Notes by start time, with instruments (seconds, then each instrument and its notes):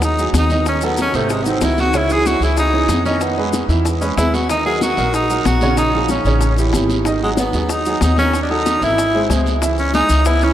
Already playing: upright bass D#2, grand piano F#3 F#4 G#4
0.02 tenor saxophone D#4, high bongo, high conga, long guiro, maracas
0.18 grand piano F#3 F#4 G#4, high conga, maracas
0.33 upright bass D#2, high bongo, low bongo, high conga, short guiro, maracas
0.38 tenor saxophone D#4
0.50 grand piano D#3 D#4 D#5, high conga, short guiro, maracas
0.66 tenor saxophone C#4, high bongo, high conga, long guiro, maracas
0.81 grand piano F#3 F#4 A4, tenor saxophone B3, high bongo, high conga, maracas
0.97 high bongo, high conga, short guiro, maracas
1.02 tenor saxophone C#4
1.13 upright bass G#1, grand piano C3 C4 C5, tenor saxophone A3, high bongo, short guiro, maracas
1.29 tenor saxophone G#3, high bongo, high conga, long guiro, maracas
1.43 grand piano D#3 D#4 F#4, tenor saxophone B3, high bongo, high conga, maracas
1.48 tenor saxophone C4
1.61 upright bass C#2, grand piano D#3 D#4 F#4, tenor saxophone E4, high bongo, low bongo, high conga, short guiro, maracas
1.78 tenor saxophone F#4, high conga, short guiro, maracas
1.93 grand piano C#3 C#4 C#5, high bongo, long guiro, maracas
1.98 tenor saxophone E4
2.10 grand piano E3 E4 G#4, tenor saxophone G#4, high conga, maracas
2.26 tenor saxophone F#4, high bongo, high conga, short guiro, maracas
2.40 upright bass C#2, grand piano E3 E4 G#4, tenor saxophone E4, high conga, short guiro, maracas
2.57 tenor saxophone D#4, high bongo, high conga, long guiro, maracas
2.73 grand piano E3 C#4 G#4, high conga
2.88 upright bass F2, high bongo, low bongo, high conga, short guiro, maracas
3.05 grand piano D#3 D#4 D#5, tenor saxophone C#4, high conga, short guiro, maracas
3.21 tenor saxophone B3, high bongo, high conga, long guiro, maracas
3.37 grand piano G#3 G#4 B4, high bongo, high conga
3.53 high bongo, high conga, short guiro, maracas
3.68 upright bass E2, grand piano E3 E4 E5, high bongo, short guiro, maracas
3.85 high bongo, high conga, long guiro, maracas
4.01 grand piano G#3 G#4 B4, tenor saxophone C#4, high bongo, high conga, maracas
4.17 upright bass D#2, grand piano G#3 G#4 B4, tenor saxophone E4, high bongo, low bongo, high conga, short guiro, maracas
4.34 tenor saxophone F#4, high conga, short guiro, maracas
4.50 grand piano D#3 D#4 D#5, tenor saxophone D#4, high bongo, high conga, long guiro, maracas
4.65 grand piano F#3 F#4 A#4, tenor saxophone G#4, high conga
4.81 tenor saxophone F#4, high bongo, high conga, short guiro, maracas
4.97 upright bass A#1, grand piano F#3 F#4 A#4, high conga, short guiro, maracas
5.13 tenor saxophone D#4, high bongo, high conga, long guiro, maracas
5.30 grand piano F#3 F#4 A#4, high conga, maracas
5.45 upright bass A#1, tenor saxophone F#4, high bongo, low bongo, high conga, short guiro, maracas
5.61 grand piano C#3 C#4 C#5, high conga, short guiro, maracas
5.77 tenor saxophone D#4, high bongo, high conga, long guiro, maracas
5.93 grand piano F3 F4 G#4, high bongo, high conga
6.08 tenor saxophone C#4, high bongo, high conga, short guiro, maracas
6.25 upright bass A1, grand piano C#3 C#4 C#5, high bongo, short guiro, maracas
6.41 high bongo, high conga, long guiro, maracas
6.57 grand piano E3 E4 G4, high bongo, high conga, maracas
6.73 upright bass G#1, grand piano E3 E4 G4, high bongo, low bongo, high conga, short guiro, maracas
6.89 high conga, short guiro, maracas
7.05 grand piano D#3 D#4 D#5, high bongo, high conga, long guiro, maracas
7.21 grand piano F#3 F#4 G#4, tenor saxophone G#3, high conga
7.37 tenor saxophone B3, high bongo, high conga, short guiro, maracas
7.53 upright bass D#2, grand piano F#3 F#4 G#4, high conga, short guiro, maracas
7.69 tenor saxophone D#4, high bongo, high conga, long guiro, maracas
7.85 grand piano F#3 F#4 G#4, high conga, maracas
8.01 upright bass D#2, tenor saxophone D#4, high bongo, low bongo, high conga, short guiro, maracas
8.17 grand piano D#3 D#4 D#5, tenor saxophone C#4, high conga, short guiro, maracas
8.33 high bongo, high conga, long guiro, maracas
8.43 tenor saxophone D4
8.49 grand piano F#3 F#4 A4, tenor saxophone D#4, high bongo, high conga
8.66 high bongo, high conga, short guiro, maracas
8.81 upright bass G#1, grand piano E3 E4 E5, tenor saxophone E4, high bongo, short guiro, maracas
8.98 high bongo, high conga, long guiro, maracas
9.14 grand piano G#3 G#4 C5, high bongo, high conga
9.29 upright bass C#2, grand piano G#3 G#4 C5, high bongo, low bongo, high conga, short guiro, maracas
9.46 high conga, short guiro, maracas
9.62 grand piano E3 E4 E5, high bongo, high conga, long guiro, maracas
9.78 tenor saxophone C#4, high conga, maracas
9.94 grand piano G#3 G#4 G#5, tenor saxophone D#4, high bongo, high conga, short guiro, maracas
10.09 upright bass C#2, short guiro, maracas
10.25 grand piano B3 B4 B5, tenor saxophone E4, high bongo, high conga, long guiro, maracas
10.41 grand piano E3 E4 E5, tenor saxophone C#4, high conga, maracas